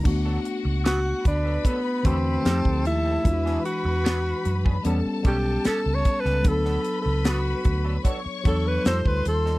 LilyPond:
<<
  \new Staff \with { instrumentName = "String section" } { \time 4/4 \key d \major \tempo 4 = 75 <fis' fis''>4. <b' b''>4. <a' a''>4 | <b' b''>2 <a' a''>2 | <b' b''>2 <cis'' cis'''>4 <c'' c'''>4 | }
  \new Staff \with { instrumentName = "Alto saxophone" } { \time 4/4 \key d \major r4 fis'8 d'8 b8 c'4 e'8~ | e'8 fis'4. r8 g'8 \tuplet 3/2 { a'8 cis''8 b'8 } | \tuplet 3/2 { a'4 a'8 } fis'4 r8 a'16 b'16 c''16 b'16 a'8 | }
  \new Staff \with { instrumentName = "Tine electric piano" } { \time 4/4 \key d \major <a b d' fis'>4~ <a b d' fis'>16 r4 r16 <d a fis' b'>8 <f a ees' g'>4 | <e gis d' f' fis'>4~ <e gis d' f' fis'>16 r8. <g b cis' a'>8 <g b cis' a'>4 r8 | <fis b d' a'>4~ <fis b d' a'>16 r4 r16 <fis b d' a'>8 <g ees' f' a'>4 | }
  \new Staff \with { instrumentName = "Clean electric guitar" } { \time 4/4 \key d \major r16 <fis b d' a'>16 r8 <fis b d' b'>16 r8 <fis b d' a'>16 <fis b d' a'>16 r16 <fis b d' a'>16 r16 <g c' ees' a'>16 r8 <g c' ees' a'>16 | r16 <fis b d' gis'>16 r8 <fis b d' b'>16 r8 <fis b d' gis'>16 <g b cis' a'>16 r16 <g b cis' a'>16 r16 <g b cis' a'>16 r8 <g b cis' a'>16 | r16 <fis b d' a'>16 r8 <fis b d' b'>16 r8 <fis b d' a'>16 <fis b d' a'>16 r16 <fis b d' a'>16 r16 <g c' ees' a'>16 r8 <g c' ees' a'>16 | }
  \new Staff \with { instrumentName = "Fingered electric bass" } { \clef bass \time 4/4 \key d \major d,8 r16 cis,8. d,8 r8 e,8 f,16 d,16 ees,8 | e,8 r16 e,8. fis,8 e,16 r16 b,,8 r16 cis,16 r16 cis,16 | d,8 r16 cis,8. d,8 r8 e,8 f,16 d,16 ees,8 | }
  \new DrumStaff \with { instrumentName = "Drums" } \drummode { \time 4/4 <cymc bd>8 hh8 <hh sn>8 <hh bd>8 <hh bd>8 <hh bd>8 <hh sn>16 bd16 hh8 | <hh bd>16 sn16 hh8 <hh sn>8 hh16 bd16 hh8 <hh bd>8 <hh sn>8 <hh bd>16 sn16 | <hh bd>16 sn16 hh8 <hh sn>8 <hh bd>8 <hh bd>8 <hh bd>8 <hh sn>16 bd16 hh16 sn16 | }
>>